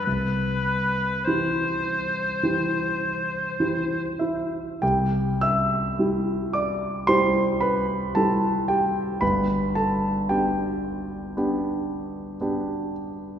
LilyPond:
<<
  \new Staff \with { instrumentName = "Oboe" } { \time 4/4 \key c \major \tempo 4 = 56 b'4 c''2~ c''8 r8 | r1 | r1 | }
  \new Staff \with { instrumentName = "Grand piano" } { \time 4/4 \key c \major << { r2. r8 <e' e''>8 | <g' g''>8 <e'' e'''>4 <d'' d'''>8 <c'' c'''>8 <b' b''>8 <a' a''>8 <g' g''>8 | <b' b''>8 <a' a''>8 <g' g''>2~ <g' g''>8 r8 | } \\ { c,4 <e e' g'>4 <e e' g'>4 <e e' g'>4 | c,4 <g e' g'>4 <g e' g'>4 <g e' g'>4 | g,,4 <b d'>4 <b d' g'>4 <b d' g'>4 | } >> }
>>